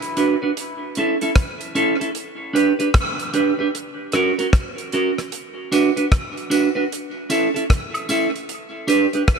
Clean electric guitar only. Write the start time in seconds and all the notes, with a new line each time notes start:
0.17 D4 F#4 B4
0.42 D4 F#4 B4
0.97 C#4 E4 A4
1.22 C#4 E4 A4
1.75 C#4 E4 A4
2.00 C#4 E4 A4
2.54 D4 G4 B4
2.79 D4 G4 B4
3.34 D4 G4 B4
3.59 D4 G4 B4
4.14 C#4 F#4 A#4
4.38 C#4 F#4 A#4
4.93 C#4 F#4 A#4
5.72 D4 F#4 B4
5.97 D4 F#4 B4
6.50 D4 F#4 B4
6.75 D4 F#4 B4
7.30 C#4 E4 A4
7.54 C#4 E4 A4
8.09 C#4 E4 A4
8.87 D4 G4 B4
9.13 D4 G4 B4